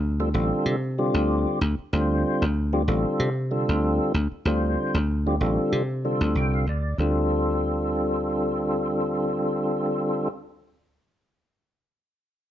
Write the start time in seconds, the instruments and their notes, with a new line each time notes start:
Already playing: slap bass D2
0.20 tonewheel organ D3 G3 C4 F4 A4
0.34 slap bass A1, tonewheel organ D3 G3 C4 F4 A4
0.66 slap bass C3
0.98 tonewheel organ D3 G3 C4 F4 G4
1.14 slap bass D2
1.61 slap bass D2
1.79 muted slap bass stroke
1.93 slap bass D2, tonewheel organ D3 G3 C4 F4 C5
2.42 slap bass D2
2.73 tonewheel organ D3 G3 C4 F4 G4
2.88 slap bass A1, tonewheel organ D3 G3 C4 F4 A4
3.20 slap bass C3
3.51 tonewheel organ D3 G3 C4 F4 A4
3.69 slap bass D2
4.14 slap bass D2
4.32 muted slap bass stroke
4.45 slap bass D2, tonewheel organ D3 G3 C4 F4 C5
4.94 slap bass D2
5.26 tonewheel organ D3 G3 C4 F4 G4
5.41 slap bass A1, tonewheel organ D3 G3 C4 F4 A4
5.72 slap bass C3
6.05 tonewheel organ D3 G3 C4 F4 A4
6.21 slap bass D2
6.35 slap bass C2, tonewheel organ G5
6.54 tonewheel organ F5
6.67 slap bass D2, tonewheel organ D5
6.98 slap bass D2, tonewheel organ D3 G3 C4 F4 A4